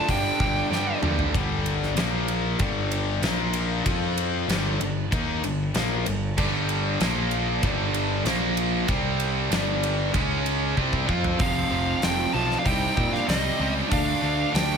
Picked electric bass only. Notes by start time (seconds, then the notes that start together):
0.09 G1
0.40 G1
0.71 G2
1.02 D2
1.35 G1
1.95 A#1
2.60 G1
3.22 A#1
3.87 F2
4.48 G1
4.81 G1
5.12 D#2
5.44 G1
5.75 A#1
6.07 G1
6.38 G1
7.01 A#1
7.63 G1
8.25 A#1
8.89 C2
9.51 G1
10.15 C#2
10.77 C2
11.09 F2
11.40 F1
11.71 F1
12.03 F1
12.34 B1
12.66 C2
12.97 A#2
13.28 C2
13.59 C#2
13.92 D2
14.22 D2
14.54 D2